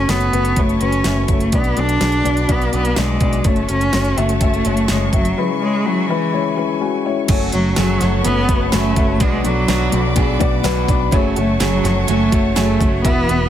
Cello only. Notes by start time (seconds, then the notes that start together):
Already playing: C#4
0.09 B3
0.58 A3
0.82 C#4
1.31 A3
1.55 B3
1.79 D4
2.51 B3
2.75 B3
2.98 G#3
3.47 A3
3.71 C#4
4.19 A3
4.43 A3
4.90 G#3
5.14 F#3
5.61 G#3
5.85 F#3
6.08 E3
7.53 F#3
7.77 F#3
8.24 B3
8.73 A3
9.21 G#3
9.44 F#3
11.37 A3
11.61 F#3
12.08 A3
12.56 A3
13.04 B3